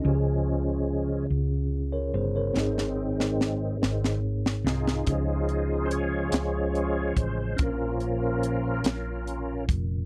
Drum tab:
HH |------------|------------|x-x-x-x-x-x-|x-x-x-x-x-x-|
SD |------------|oo-oo-oo-ooo|------o-----|------o-----|
BD |------------|------------|o---------o-|o---------o-|